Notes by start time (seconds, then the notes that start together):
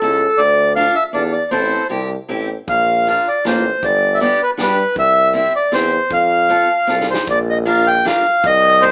0.02 C#2 C#4 E4 A4
0.38 D2 D5
0.76 D4 F4 A4 F5
0.95 E5
1.13 E2 D4 F4 A4 D5
1.33 D5
1.51 A1 C4 E4 A4 C5
1.89 C2 C4 E4 G4
2.29 A1 C4 E4 G4
2.68 A#1 F5, kick, closed hi-hat
3.07 A#3 D4 F4 F5, closed hi-hat
3.28 D5
3.45 A1 A#3 D4 F4 C5, snare, closed hi-hat
3.83 G1 D5, kick, closed hi-hat
4.15 E5
4.20 B3 D4 G4 D5, closed hi-hat
4.43 B4
4.57 G2 B3 D4 G4, snare, closed hi-hat
4.62 B4
4.96 C2 E5, kick, closed hi-hat
5.33 C4 E4 G4 E5, closed hi-hat
5.56 D5
5.72 E2 C4 E4 G4 C5, snare, closed hi-hat
6.11 F2 F5, kick, closed hi-hat
6.49 C4 F4 A4, closed hi-hat
6.87 C2 C4 F4 A4, snare
7.01 snare
7.11 C5, snare
7.27 A#1 D5, kick, closed hi-hat
7.50 D#5
7.66 D4 F4 A#4 F5, closed hi-hat
7.87 G5
8.05 D4 F4 A#4 F5, snare, closed hi-hat
8.44 C2 D#5, kick, closed hi-hat
8.82 C4 D#4 G4 C5, closed hi-hat